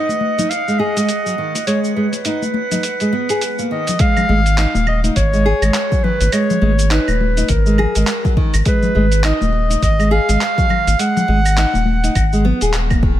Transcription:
Already playing: clarinet D#5, synth texture F#5
0.09 high conga, cabasa
0.21 high conga
0.38 nylon-string guitar D#4, closed hi-hat, high conga, low conga, cabasa
0.50 clarinet F5, closed hi-hat, cabasa
0.68 nylon-string guitar G#3, cabasa
0.79 nylon-string guitar G#4, clarinet D#5, muted conga
0.97 nylon-string guitar G#3, closed hi-hat, cabasa
1.09 closed hi-hat, cabasa
1.26 nylon-string guitar F#3, cabasa
1.38 nylon-string guitar D#3
1.55 closed hi-hat, muted conga, cabasa
1.67 nylon-string guitar G#3, clarinet C#5, closed hi-hat, cabasa
1.84 cabasa
1.95 nylon-string guitar G#3, clarinet B4
2.13 closed hi-hat, muted conga, cabasa
2.25 nylon-string guitar D#4, closed hi-hat, muted conga, cabasa
2.42 high conga, cabasa
2.54 muted conga, high conga
2.71 nylon-string guitar D#4, closed hi-hat, high conga, low conga, cabasa
2.83 closed hi-hat, cabasa
3.00 nylon-string guitar G#3, closed hi-hat, cabasa
3.13 nylon-string guitar B3, muted conga
3.29 nylon-string guitar G#4, closed hi-hat, cabasa
3.41 closed hi-hat, cabasa
3.59 nylon-string guitar A#3, muted conga, cabasa
3.71 nylon-string guitar D#3, clarinet D#5
3.87 closed hi-hat, low conga, cabasa
3.99 nylon-string guitar G#3, clarinet F5, kick, closed hi-hat, cabasa
4.17 low conga, cabasa, claves
4.29 analog synth bass G#1, nylon-string guitar G#3, muted conga, high conga
4.46 closed hi-hat, cabasa
4.58 nylon-string guitar D#4, clap, closed hi-hat, cabasa
4.75 analog synth bass D#1, high conga, cabasa
4.87 clarinet D#5, high conga, claves
5.04 nylon-string guitar D#4, closed hi-hat, high conga, cabasa
5.16 analog synth bass G#1, clarinet C#5, kick, closed hi-hat, cabasa
5.33 nylon-string guitar G#3, cabasa
5.46 nylon-string guitar G#4
5.62 analog synth bass G#1, nylon-string guitar G#3, closed hi-hat, cabasa, claves
5.74 clap, closed hi-hat, cabasa
5.92 nylon-string guitar F#3, kick, cabasa
6.04 nylon-string guitar D#3, clarinet B4, low conga
6.21 analog synth bass G#1, closed hi-hat, muted conga, cabasa
6.32 nylon-string guitar G#3, clarinet C#5, closed hi-hat, cabasa, claves
6.50 low conga, cabasa
6.61 analog synth bass G#1, nylon-string guitar G#3, muted conga, high conga
6.79 closed hi-hat, cabasa
6.91 nylon-string guitar D#4, clarinet B4, clap, closed hi-hat, cabasa
7.08 analog synth bass D#1, high conga, cabasa, claves
7.21 high conga
7.37 nylon-string guitar D#4, closed hi-hat, high conga, cabasa
7.49 analog synth bass G#1, clarinet A#4, kick, closed hi-hat, cabasa
7.66 nylon-string guitar G#3, cabasa
7.78 nylon-string guitar G#4, low conga, claves
7.95 analog synth bass G#1, nylon-string guitar G#3, closed hi-hat, cabasa
8.07 clap, closed hi-hat, cabasa
8.25 nylon-string guitar F#3, kick, cabasa
8.37 nylon-string guitar D#3, kick
8.54 analog synth bass G#1, closed hi-hat, cabasa, claves
8.65 nylon-string guitar G#3, clarinet B4, kick, closed hi-hat, cabasa
8.82 low conga, cabasa
8.95 analog synth bass G#1, nylon-string guitar G#3, muted conga, high conga
9.12 closed hi-hat, cabasa
9.24 nylon-string guitar D#4, clarinet D#5, clap, closed hi-hat, cabasa, claves
9.41 analog synth bass D#1, high conga, cabasa
9.53 high conga
9.70 nylon-string guitar D#4, closed hi-hat, high conga, cabasa
9.82 analog synth bass G#1, clarinet D#5, kick, closed hi-hat, cabasa
9.99 nylon-string guitar G#3, cabasa, claves
10.11 nylon-string guitar G#4, clarinet F5
10.29 analog synth bass G#1, nylon-string guitar G#3, closed hi-hat, cabasa
10.41 clap, closed hi-hat, cabasa
10.58 nylon-string guitar F#3, kick, cabasa
10.69 nylon-string guitar D#3, low conga, claves
10.87 analog synth bass G#1, closed hi-hat, muted conga, cabasa
10.99 nylon-string guitar G#3, clarinet F#5, closed hi-hat, cabasa
11.17 low conga, cabasa
11.28 analog synth bass G#1, nylon-string guitar G#3, muted conga, high conga
11.46 closed hi-hat, cabasa, claves
11.57 nylon-string guitar D#4, clap, closed hi-hat, cabasa
11.73 analog synth bass D#1, high conga, cabasa
11.85 high conga
12.04 nylon-string guitar D#4, closed hi-hat, high conga, cabasa
12.15 analog synth bass G#1, kick, closed hi-hat, cabasa, claves
12.33 nylon-string guitar G#3, cabasa
12.45 nylon-string guitar B3, low conga
12.61 analog synth bass D#1, nylon-string guitar G#4, closed hi-hat, cabasa
12.73 clap, closed hi-hat, cabasa
12.90 nylon-string guitar A#3, kick, cabasa, claves
13.03 nylon-string guitar D#3, kick

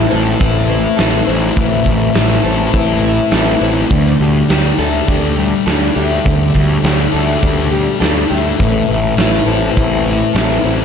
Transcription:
Already playing: overdriven electric guitar A2 A3 E4, twelve-string acoustic guitar E3
0.10 picked electric bass A1, twelve-string acoustic guitar C4, overdriven electric guitar A4
0.39 picked electric bass A1, twelve-string acoustic guitar E3, overdriven electric guitar C4, distorted electric guitar E4, kick, open hi-hat
0.68 twelve-string acoustic guitar E3, distorted electric guitar A3, overdriven electric guitar E4
0.97 picked electric bass A1, twelve-string acoustic guitar E3, distorted electric guitar C4, overdriven electric guitar A4, snare, open hi-hat
1.26 picked electric bass A1, twelve-string acoustic guitar C4, overdriven electric guitar E4
1.55 picked electric bass A1, overdriven electric guitar A2, twelve-string acoustic guitar E3, kick, open hi-hat
1.85 picked electric bass A1, twelve-string acoustic guitar E3, overdriven electric guitar A3, kick
2.14 picked electric bass A1, twelve-string acoustic guitar E3, overdriven electric guitar E4, snare, open hi-hat
2.43 picked electric bass A1, twelve-string acoustic guitar C4, overdriven electric guitar A4
2.72 picked electric bass A1, twelve-string acoustic guitar E3, overdriven electric guitar C4, distorted electric guitar E4, kick, open hi-hat
3.02 twelve-string acoustic guitar E3, distorted electric guitar A3, overdriven electric guitar E4
3.31 picked electric bass A1, twelve-string acoustic guitar E3, distorted electric guitar C4, overdriven electric guitar A4, snare, open hi-hat
3.60 picked electric bass A1, twelve-string acoustic guitar C4, overdriven electric guitar E4
3.90 picked electric bass D2, overdriven electric guitar D3, twelve-string acoustic guitar G3, kick, open hi-hat
4.06 snare
4.19 picked electric bass D2, overdriven electric guitar G3, twelve-string acoustic guitar G3, snare
4.49 picked electric bass D2, twelve-string acoustic guitar G3, overdriven electric guitar G4, snare, open hi-hat
4.78 picked electric bass D2, twelve-string acoustic guitar A3, overdriven electric guitar A4
5.08 picked electric bass D2, twelve-string acoustic guitar G3, overdriven electric guitar D4, distorted electric guitar G4, kick, open hi-hat
5.36 twelve-string acoustic guitar G3, distorted electric guitar G3, overdriven electric guitar G4
5.66 picked electric bass D2, twelve-string acoustic guitar G3, distorted electric guitar D4, overdriven electric guitar A4, snare, open hi-hat
5.95 picked electric bass D2, twelve-string acoustic guitar A3, overdriven electric guitar G4
6.24 picked electric bass D2, overdriven electric guitar D3, twelve-string acoustic guitar G3, kick, open hi-hat
6.53 picked electric bass D2, overdriven electric guitar G3, twelve-string acoustic guitar G3, kick, snare
6.82 picked electric bass D2, twelve-string acoustic guitar G3, overdriven electric guitar G4, snare, open hi-hat
7.13 picked electric bass D2, twelve-string acoustic guitar A3, overdriven electric guitar A4
7.41 picked electric bass D2, twelve-string acoustic guitar G3, overdriven electric guitar D4, distorted electric guitar G4, kick, open hi-hat
7.71 twelve-string acoustic guitar G3, distorted electric guitar G3, overdriven electric guitar G4
8.00 picked electric bass D2, twelve-string acoustic guitar G3, distorted electric guitar D4, overdriven electric guitar A4, snare, open hi-hat
8.29 picked electric bass D2, twelve-string acoustic guitar A3, overdriven electric guitar G4
8.58 picked electric bass A1, overdriven electric guitar A2, twelve-string acoustic guitar E3, kick, open hi-hat
8.87 picked electric bass A1, twelve-string acoustic guitar E3, overdriven electric guitar A3
9.17 picked electric bass A1, twelve-string acoustic guitar E3, overdriven electric guitar E4, snare, open hi-hat
9.46 picked electric bass A1, twelve-string acoustic guitar C4, overdriven electric guitar A4
9.75 picked electric bass A1, twelve-string acoustic guitar E3, overdriven electric guitar C4, distorted electric guitar E4, kick, open hi-hat
10.05 twelve-string acoustic guitar E3, distorted electric guitar A3, overdriven electric guitar E4
10.33 picked electric bass A1, twelve-string acoustic guitar E3, distorted electric guitar C4, overdriven electric guitar A4, snare, open hi-hat
10.63 picked electric bass A1, twelve-string acoustic guitar C4, overdriven electric guitar E4

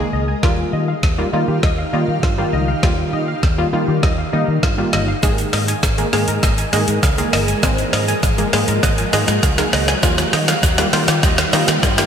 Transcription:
Already playing: analog polysynth D#3 G#3, ambient pad G#3 G#4 A#4 D#5, riser
0.00 analog polysynth A#3 G#4, synth pluck A#4
0.13 fingered electric bass C#2, synth pluck D#5
0.28 synth pluck G#5
0.43 fingered electric bass D#2, analog polysynth D#3 G3 A#3 F4, ambient pad D#3 D#4 G4 F5, synth pluck F4, kick, snare
0.73 fingered electric bass D#3, synth pluck D#5
0.88 synth pluck F5
1.03 fingered electric bass D#2, kick, snare
1.18 analog polysynth D#3 G3 A#3 F4, synth pluck G4
1.33 analog polysynth D#3 G3 A#3 F4, fingered electric bass D#3, synth pluck F4
1.48 fingered electric bass D#3, synth pluck G4
1.63 fingered electric bass D#2, synth pluck D#5, kick, snare
1.78 synth pluck F5
1.93 analog polysynth D#3 G3 A#3 F4, fingered electric bass D#3, synth pluck D#5
2.08 fingered electric bass D#3
2.23 fingered electric bass G2, synth pluck F4, kick, snare
2.38 analog polysynth D#3 G3 A#3 F4, synth pluck G4
2.53 fingered electric bass C#2, synth pluck D#5
2.68 synth pluck F5
2.83 fingered electric bass D#2, analog polysynth D#3 G3 A#3 F4, synth pluck F4, kick, snare
3.13 fingered electric bass D#3, synth pluck D#5
3.28 synth pluck F5
3.43 fingered electric bass D#2, kick, snare
3.58 analog polysynth D#3 G3 A#3 F4, synth pluck G4
3.73 analog polysynth D#3 G3 A#3 F4, fingered electric bass D#3, synth pluck F4
3.88 fingered electric bass D#3, synth pluck G4
4.03 fingered electric bass D#2, synth pluck D#5, kick, snare
4.18 synth pluck F5
4.33 analog polysynth D#3 G3 A#3 D#4, fingered electric bass D#3, synth pluck D#5
4.48 fingered electric bass D#3
4.63 fingered electric bass G2, synth pluck F4, kick, snare
4.78 analog polysynth D#3 G3 A#3 F4, synth pluck G4
4.93 fingered electric bass G1, synth pluck D#5, snare
5.08 synth pluck F5
5.23 fingered electric bass G#1, analog polysynth D#3 G#3 A#3 G#4, ambient pad G#3 G#4 A#4 D#5, synth pluck G#4, kick, snare, shaker
5.38 closed hi-hat, shaker
5.53 fingered electric bass G#2, synth pluck D#5, snare, open hi-hat
5.68 synth pluck G#5, closed hi-hat, shaker
5.83 fingered electric bass G#1, kick, snare, shaker
5.98 analog polysynth D#3 G#3 A#3 G#4, synth pluck A#4, closed hi-hat, shaker
6.13 fingered electric bass G#2, analog polysynth D#3 G#3 A#3 G#4, synth pluck G#4, snare, open hi-hat
6.28 fingered electric bass G#2, synth pluck A#4, closed hi-hat, shaker
6.43 fingered electric bass G#1, synth pluck D#5, kick, snare, shaker
6.58 synth pluck G#5, closed hi-hat, shaker
6.73 fingered electric bass G#2, analog polysynth D#3 G#3 A#3 G#4, synth pluck D#5, snare, open hi-hat, shaker
6.88 fingered electric bass G#2, closed hi-hat, shaker
7.03 fingered electric bass C#2, synth pluck G#4, kick, snare, shaker
7.18 analog polysynth D#3 G#3 A#3 G#4, synth pluck A#4, closed hi-hat, shaker
7.33 fingered electric bass G1, synth pluck D#5, snare, open hi-hat
7.48 synth pluck G#5, closed hi-hat, shaker
7.63 fingered electric bass G#1, analog polysynth D#3 G#3 A#3 C4, synth pluck G#4, kick, snare, shaker
7.78 closed hi-hat, shaker
7.93 fingered electric bass G#2, synth pluck D#5, snare, open hi-hat
8.08 synth pluck G#5, closed hi-hat, shaker
8.23 fingered electric bass G#1, kick, snare, shaker
8.38 analog polysynth D#3 G#3 A#3 G#4, synth pluck A#4, closed hi-hat, shaker
8.53 fingered electric bass G#2, analog polysynth D#3 G#3 A#3 G#4, synth pluck G#4, snare, open hi-hat
8.68 fingered electric bass G#2, synth pluck A#4, closed hi-hat, shaker
8.83 fingered electric bass G#1, synth pluck D#5, kick, snare, shaker
8.98 synth pluck G#5, closed hi-hat, shaker
9.13 fingered electric bass G#2, analog polysynth D#3 G#3 A#3 G#4, synth pluck D#5, snare, open hi-hat, shaker
9.28 fingered electric bass G#2, snare, closed hi-hat, shaker
9.43 fingered electric bass C#2, synth pluck G#4, kick, snare, shaker
9.58 analog polysynth D#3 G#3 A#3 G#4, synth pluck A#4, snare, closed hi-hat, shaker
9.73 fingered electric bass C#2, synth pluck D#5, snare, open hi-hat
9.88 synth pluck G#5, snare, closed hi-hat, shaker
10.03 fingered electric bass D#2, analog polysynth D#3 G3 A#3 F4, ambient pad D#3 D#4 G4 F5, synth pluck F4, kick, snare, shaker
10.18 snare, closed hi-hat, shaker
10.33 fingered electric bass D#3, synth pluck D#5, snare, open hi-hat
10.48 synth pluck F5, snare, closed hi-hat, shaker
10.63 fingered electric bass D#2, kick, snare, shaker
10.78 analog polysynth D#3 G3 A#3 F4, synth pluck G4, snare, closed hi-hat, shaker
10.93 analog polysynth D#3 G3 A#3 F4, fingered electric bass D#3, synth pluck F4, snare, open hi-hat
11.08 fingered electric bass D#3, synth pluck G4, snare, closed hi-hat, shaker
11.23 fingered electric bass D#2, synth pluck D#5, kick, snare, shaker
11.38 synth pluck F5, snare, closed hi-hat, shaker
11.53 analog polysynth D#3 G3 A#3 F4, fingered electric bass D#3, synth pluck D#5, snare, open hi-hat, shaker
11.68 fingered electric bass D#3, snare, closed hi-hat, shaker
11.83 fingered electric bass G2, synth pluck F4, kick, snare, shaker
11.98 analog polysynth D#3 G3 A#3 F4, synth pluck G4, snare, closed hi-hat, shaker

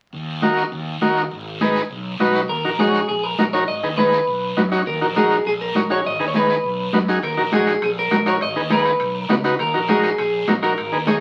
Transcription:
0.13 fretless electric bass D#2, long guiro
0.42 transistor combo organ D#4 F#4 A#4, high conga, short guiro
0.57 short guiro
0.72 fretless electric bass D#2, long guiro
1.01 fretless electric bass D#2, transistor combo organ D#4 F#4 A#4, high conga, short guiro
1.17 short guiro
1.31 fretless electric bass G#1, long guiro
1.61 transistor combo organ D#4 G#4 B4, high conga, short guiro
1.76 short guiro
1.90 fretless electric bass B1, long guiro
2.19 fretless electric bass B1, transistor combo organ D#4 F#4 B4, high conga, short guiro
2.34 short guiro
2.49 fretless electric bass D#2, clean electric guitar A#4, long guiro
2.64 fretless electric bass A#1, transistor combo organ D#4 F#4 A#4
2.79 transistor combo organ D#4 F#4 C#5, clean electric guitar G#4, high conga, short guiro
2.94 short guiro
3.08 fretless electric bass A#1, clean electric guitar G#4, long guiro
3.23 clean electric guitar A#4
3.38 fretless electric bass A#1, transistor combo organ D#4 F#4 A#4, high conga, short guiro
3.53 transistor combo organ D#4 F#4 A#4, clean electric guitar C#5, short guiro
3.68 fretless electric bass G#1, clean electric guitar D#5, long guiro
3.83 fretless electric bass D#2, transistor combo organ D#4 G#4 B4
3.98 transistor combo organ D#4 G#4 B4, clean electric guitar B4, high conga, short guiro
4.12 short guiro
4.27 fretless electric bass B1, long guiro
4.57 fretless electric bass F#2, transistor combo organ D#4 F#4 B4, high conga, short guiro
4.71 transistor combo organ D#4 F#4 C#5, short guiro
4.86 fretless electric bass D#2, clean electric guitar A#4, long guiro
5.01 fretless electric bass A#1, transistor combo organ D#4 F#4 A#4
5.16 transistor combo organ D#4 F#4 A#4, clean electric guitar G#4, high conga, short guiro
5.30 short guiro
5.45 fretless electric bass A#1, clean electric guitar G#4, long guiro
5.61 clean electric guitar A#4
5.75 fretless electric bass A#1, transistor combo organ D#4 F#4 C#5, high conga, short guiro
5.90 transistor combo organ D#4 F#4 G#4, clean electric guitar C#5, short guiro
6.04 fretless electric bass G#1, clean electric guitar D#5, long guiro
6.19 fretless electric bass D#2, transistor combo organ D#4 G#4 B4
6.28 clean electric guitar C#5
6.34 transistor combo organ D#4 G#4 B4, clean electric guitar B4, high conga, short guiro
6.49 short guiro
6.63 fretless electric bass B1, long guiro
6.93 fretless electric bass F#2, transistor combo organ D#4 F#4 B4, high conga, short guiro
7.08 transistor combo organ D#4 F#4 G#4, short guiro
7.23 fretless electric bass D#2, clean electric guitar A#4, high timbale, long guiro
7.37 fretless electric bass A#1, transistor combo organ D#4 F#4 A#4
7.52 transistor combo organ D#4 F#4 G#4, clean electric guitar G#4, high conga, high timbale, short guiro
7.67 high timbale, short guiro
7.82 fretless electric bass A#1, clean electric guitar G#4, high timbale, long guiro
7.99 clean electric guitar A#4
8.11 fretless electric bass A#1, transistor combo organ D#4 F#4 A#4, high conga, high timbale, short guiro
8.26 transistor combo organ D#4 F#4 A#4, clean electric guitar C#5, high timbale, short guiro
8.41 fretless electric bass G#1, clean electric guitar D#5, high timbale, long guiro
8.56 fretless electric bass D#2, transistor combo organ D#4 G#4 B4
8.70 transistor combo organ D#4 G#4 B4, clean electric guitar B4, high conga, high timbale, short guiro
8.85 high timbale, short guiro
9.00 fretless electric bass B1, high timbale, long guiro
9.20 clean electric guitar A#4
9.29 fretless electric bass C#2, transistor combo organ D#4 F#4 B4, high conga, high timbale, low timbale, short guiro
9.44 transistor combo organ D#4 F#4 B4, high timbale, short guiro
9.59 fretless electric bass D#2, clean electric guitar A#4, high timbale, long guiro
9.74 fretless electric bass A#1, transistor combo organ D#4 F#4 A#4
9.88 transistor combo organ D#4 F#4 A#4, clean electric guitar G#4, high conga, high timbale, short guiro
10.03 high timbale, short guiro
10.18 fretless electric bass A#1, clean electric guitar G#4, high timbale, long guiro
10.48 fretless electric bass A#1, transistor combo organ D#4 F#4 A#4, high conga, high timbale, low timbale, short guiro
10.62 transistor combo organ D#4 F#4 A#4, clean electric guitar A#4, high timbale, short guiro
10.77 fretless electric bass G#1, high timbale, long guiro
10.92 fretless electric bass D#2, transistor combo organ D#4 G#4 B4
11.07 transistor combo organ D#4 G#4 C#5, clean electric guitar G#4, high conga, high timbale, short guiro

